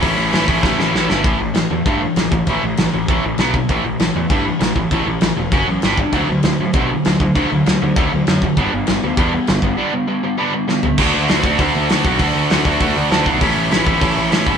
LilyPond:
<<
  \new Staff \with { instrumentName = "Distorted electric guitar" } { \clef bass \time 4/4 \key a \mixolydian \tempo 4 = 198 <a, e a cis' e'>4 <a, e a cis' e'>8 <a, e a cis' e'>8 <a, e a cis' e'>4 <a, e a cis' e'>8 <a, e a cis' e'>8 | <a, e a>8 <a, e>8 <a, e>8 <a, e>8 <a, e a>8 <a, e>8 <a, e>8 <a, e>8 | <a, e a>8 <a, e>8 <a, e>8 <a, e>8 <a, e a>8 <a, e>8 <b, fis b>8 <b, fis>8 | <a, e a>8 <a, e>8 <a, e>8 <a, e>8 <a, e a>8 <a, e>8 <a, e>8 <a, e>8 |
<a, e a>8 <a, e>8 <a, e>8 <a, e>8 <fis cis' fis'>8 <fis cis'>8 <g d' g'>8 <g d'>8 | <d fis a>8 <d fis>8 <d fis>8 <d fis>8 <d fis a>8 <d fis>8 <d fis>8 <d fis>8 | <d fis a>8 <d fis>8 <d fis>8 <d fis>8 <d fis a>8 <d fis>8 <d fis>8 <d fis>8 | <g b d'>8 <g b>8 <g b>8 <g b>8 <g b d'>8 <g b>8 <g b>8 <g b>8 |
<g b d'>8 <g b>8 <g b>8 <g b>8 <g b d'>8 <g b>8 <g b>8 <g b>8 | <d a d' fis'>4 <d a d' fis'>8 <d a d' fis'>8 <d a d' fis'>4 <d a d' fis'>8 <d a d' fis'>8 | <d a d' fis'>4 <d a d' fis'>8 <d a d' fis'>8 <d a d' fis'>4 <d a d' fis'>8 <d a d' fis'>8 | <a, e a cis' e'>4 <a, e a cis' e'>8 <a, e a cis' e'>8 <a, e a cis' e'>4 <a, e a cis' e'>8 <a, e a cis' e'>8 | }
  \new Staff \with { instrumentName = "Picked electric bass" } { \clef bass \time 4/4 \key a \mixolydian a,,8 a,,8 a,,8 a,,8 a,,8 a,,8 a,,8 g,,8 | a,,8 a,,8 a,,8 e,8 g,4 a,,8 a,,8 | a,,8 a,,8 a,,8 a,,8 a,,8 a,,8 b,,4 | a,,8 a,,8 a,,8 e,8 g,4 a,,8 a,,8 |
a,,8 a,,8 a,,8 e,,8 fis,,8 a,,8 g,,4 | d,8 d,8 d,8 a,8 b,4 d,8 d,8 | d,8 d,8 d,8 d,8 d,8 d,8 fis,4 | g,,8 g,,8 g,,8 d,8 e,4 g,,8 g,,8 |
r1 | d,8 d,8 d,8 d,8 d,8 d,8 d,8 b,,8 | d,8 d,8 d,8 d,8 d,8 d,8 d,8 b,,8 | a,,8 a,,8 a,,8 a,,8 a,,8 a,,8 a,,8 g,,8 | }
  \new DrumStaff \with { instrumentName = "Drums" } \drummode { \time 4/4 <hho bd>4 <hho sn>8 bd8 <bd sn>8 sn8 sn8 sn8 | <cymc bd>4 <cymc sn>4 <cymc bd>4 <cymc sn>8 bd8 | <cymc bd>4 <cymc sn>4 <cymc bd>4 <cymc sn>8 bd8 | <cymc bd>4 <cymc sn>4 <cymc bd>4 <cymc sn>8 bd8 |
<cymc bd>4 <cymc sn>4 <cymc bd>4 <cymc sn>8 bd8 | <cymc bd>4 <cymc sn>4 <cymc bd>4 <cymc sn>8 bd8 | <cymc bd>4 <cymc sn>4 <cymc bd>4 <cymc sn>8 bd8 | <cymc bd>4 <cymc sn>4 <cymc bd>4 <cymc sn>8 bd8 |
r4 r4 r4 sn8 tomfh8 | <cymc bd>4 <hho sn>8 bd8 <hho bd>4 <hho sn>8 bd8 | <hho bd>4 <hho sn>8 bd8 <hho bd>4 <hho sn>8 bd8 | <hho bd>4 <hho sn>8 bd8 <hho bd>4 <hho sn>8 bd8 | }
>>